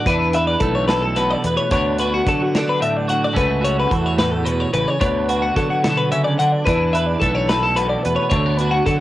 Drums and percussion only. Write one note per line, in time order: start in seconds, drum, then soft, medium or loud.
0.06 kick loud
0.06 closed hi-hat medium
0.33 closed hi-hat medium
0.60 kick medium
0.60 closed hi-hat medium
0.89 snare loud
0.89 closed hi-hat medium
1.16 closed hi-hat medium
1.44 closed hi-hat medium
1.71 kick loud
1.71 closed hi-hat medium
1.98 closed hi-hat medium
2.27 kick medium
2.27 closed hi-hat medium
2.55 snare loud
2.55 closed hi-hat medium
2.82 closed hi-hat medium
3.09 closed hi-hat medium
3.36 kick loud
3.36 closed hi-hat medium
3.65 closed hi-hat medium
3.91 kick medium
3.91 closed hi-hat medium
4.19 snare loud
4.19 closed hi-hat medium
4.46 closed hi-hat medium
4.74 closed hi-hat medium
5.01 kick loud
5.01 closed hi-hat medium
5.29 closed hi-hat medium
5.56 kick medium
5.56 closed hi-hat medium
5.84 snare loud
5.84 closed hi-hat medium
6.12 closed hi-hat medium
6.40 closed hi-hat medium
6.67 kick loud
6.67 closed hi-hat medium
6.95 closed hi-hat medium
7.22 kick medium
7.22 closed hi-hat medium
7.49 snare loud
7.49 closed hi-hat medium
7.77 closed hi-hat medium
8.05 closed hi-hat medium
8.31 kick loud
8.31 closed hi-hat medium
8.59 closed hi-hat medium
8.86 kick medium
8.86 closed hi-hat medium